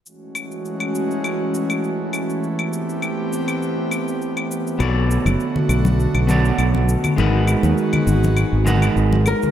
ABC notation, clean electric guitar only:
X:1
M:4/4
L:1/8
Q:"Swing 16ths" 1/4=101
K:F#dor
V:1 name="Clean electric guitar"
z8 | z8 | [B,FAc=d]4- [B,FAcd] [B,FAcd]3 | [G,D^ABf]4- [G,DABf] [G,DABf]3 |]